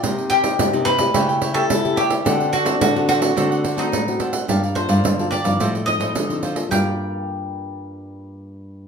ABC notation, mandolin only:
X:1
M:4/4
L:1/16
Q:1/4=108
K:Gm
V:1 name="Mandolin"
z2 G4 =B4- B A3 G2- | G2 ^F2 F2 F4- F E3 z2 | z2 c4 d4 e4 z2 | g16 |]